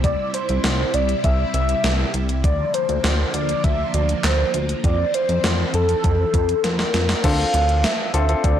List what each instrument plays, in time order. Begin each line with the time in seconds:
Already playing: analog synth bass C2, string machine C3 G3 E4
0.04 soft synth lead D5, kick, closed hi-hat
0.34 soft synth lead C5, closed hi-hat
0.49 analog synth bass C2, closed hi-hat
0.64 analog synth bass C2, snare, closed hi-hat
0.94 analog synth bass C2, soft synth lead D5, closed hi-hat
1.09 closed hi-hat
1.24 analog synth bass C2, soft synth lead E5, kick, closed hi-hat
1.54 analog synth bass C2, soft synth lead E5, closed hi-hat
1.69 closed hi-hat
1.84 analog synth bass C2, snare, closed hi-hat
2.14 analog synth bass C2, closed hi-hat
2.29 closed hi-hat
2.44 analog synth bass D2, string machine D3 F3 A#3, soft synth lead D5, kick, closed hi-hat
2.74 soft synth lead C5, closed hi-hat
2.89 analog synth bass D2, closed hi-hat
3.04 analog synth bass D2, snare, closed hi-hat
3.34 analog synth bass D2, soft synth lead D5, closed hi-hat
3.49 closed hi-hat
3.64 analog synth bass D2, soft synth lead E5, kick, closed hi-hat
3.94 analog synth bass D2, soft synth lead D5, closed hi-hat
4.09 closed hi-hat
4.24 analog synth bass D2, soft synth lead C5, snare, clap, closed hi-hat
4.54 analog synth bass D2, closed hi-hat
4.69 closed hi-hat
4.84 analog synth bass F2, string machine E3 C4, soft synth lead D5, kick, closed hi-hat
5.14 soft synth lead C5, closed hi-hat
5.29 analog synth bass F2, closed hi-hat
5.44 analog synth bass F2, snare, closed hi-hat
5.74 analog synth bass F2, soft synth lead A4, closed hi-hat
5.89 closed hi-hat
6.04 analog synth bass F2, kick, closed hi-hat
6.34 analog synth bass F2, kick, closed hi-hat
6.49 closed hi-hat
6.64 analog synth bass F2, soft synth lead A#4, snare, closed hi-hat
6.79 snare
6.94 analog synth bass F2, snare, closed hi-hat
7.09 snare, closed hi-hat
7.24 analog synth bass D2, grand piano C4 D4 F4 A4, soft synth lead F5, kick, closed hi-hat, crash
7.54 analog synth bass D2, closed hi-hat
7.69 closed hi-hat
7.84 soft synth lead E5, snare, closed hi-hat
8.14 analog synth bass D2, grand piano C4 D4 F4 A4, closed hi-hat
8.29 grand piano C4 D4 F4 A4, closed hi-hat
8.44 analog synth bass D2, soft synth lead D5, kick, closed hi-hat